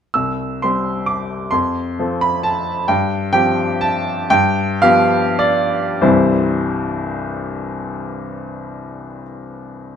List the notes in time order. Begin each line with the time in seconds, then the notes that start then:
0.14 C2 E6
0.62 G3 C4 G4 C6
1.06 D6
1.51 F2 C6
1.99 F3 C4 A4
2.21 B5
2.43 A5
2.88 G2 G5
3.33 F3 C4 G4 G5
3.81 A5
4.30 G2 G5
4.82 F3 B3 G4 F5
5.39 D5
6.01 C2 G2 E3 G3 C4 E4 C5